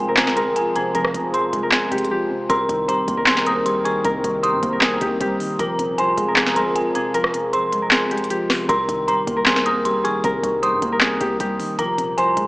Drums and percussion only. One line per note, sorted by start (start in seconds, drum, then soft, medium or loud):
0.17 snare loud
0.17 clap loud
0.17 closed hi-hat medium
0.27 snare medium
0.37 closed hi-hat medium
0.56 closed hi-hat loud
0.76 closed hi-hat medium
0.95 closed hi-hat medium
1.05 cross-stick loud
1.14 closed hi-hat medium
1.34 closed hi-hat medium
1.53 closed hi-hat medium
1.72 snare loud
1.72 clap loud
1.72 closed hi-hat medium
1.92 closed hi-hat medium
1.98 closed hi-hat medium
2.05 closed hi-hat medium
2.50 closed hi-hat medium
2.69 closed hi-hat medium
2.89 closed hi-hat medium
3.08 closed hi-hat medium
3.26 snare loud
3.26 clap loud
3.26 closed hi-hat medium
3.37 snare medium
3.46 closed hi-hat medium
3.66 closed hi-hat loud
3.85 closed hi-hat medium
4.05 closed hi-hat medium
4.24 closed hi-hat medium
4.44 closed hi-hat medium
4.63 closed hi-hat medium
4.81 snare loud
4.81 clap loud
4.81 closed hi-hat medium
5.01 closed hi-hat medium
5.21 closed hi-hat loud
5.40 open hi-hat medium
5.59 closed hi-hat medium
5.79 closed hi-hat medium
5.98 closed hi-hat medium
6.18 closed hi-hat medium
6.36 snare loud
6.36 clap loud
6.36 closed hi-hat medium
6.46 snare medium
6.56 closed hi-hat medium
6.76 closed hi-hat loud
6.95 closed hi-hat medium
7.14 closed hi-hat medium
7.24 cross-stick loud
7.34 closed hi-hat medium
7.53 closed hi-hat medium
7.72 closed hi-hat medium
7.91 snare loud
7.91 clap loud
7.91 closed hi-hat medium
8.11 closed hi-hat medium
8.17 closed hi-hat medium
8.24 closed hi-hat medium
8.30 closed hi-hat loud
8.50 cross-stick medium
8.50 snare medium
8.50 open hi-hat medium
8.69 closed hi-hat medium
8.89 closed hi-hat medium
9.08 closed hi-hat medium
9.27 closed hi-hat medium
9.46 snare loud
9.46 clap loud
9.46 closed hi-hat medium
9.56 snare medium
9.66 closed hi-hat medium
9.85 closed hi-hat loud
10.05 closed hi-hat medium
10.24 closed hi-hat medium
10.44 closed hi-hat medium
10.63 closed hi-hat medium
10.82 closed hi-hat medium
11.01 snare loud
11.01 clap loud
11.01 closed hi-hat medium
11.21 closed hi-hat medium
11.40 closed hi-hat loud
11.60 open hi-hat medium
11.79 closed hi-hat medium
11.98 closed hi-hat medium
12.18 closed hi-hat medium
12.37 closed hi-hat medium